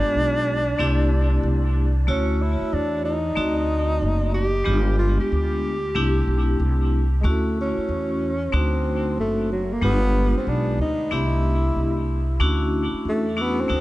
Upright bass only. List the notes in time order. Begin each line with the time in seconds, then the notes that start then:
0.03 muted upright bass stroke
0.15 B1
0.79 C2
1.43 C2
2.08 D2
2.62 muted upright bass stroke
2.73 E2
3.37 D2
4.02 F#1
4.67 G1
5.20 muted upright bass stroke
5.32 D2
5.95 C2
6.27 B1
6.60 C2
7.24 D2
7.78 muted upright bass stroke
7.89 E2
8.54 D2
9.18 F#1
9.82 G1
10.36 muted upright bass stroke
10.47 B1
10.78 D2
11.12 C2
11.76 C2
12.40 D2
12.93 muted upright bass stroke
13.05 E2
13.70 D2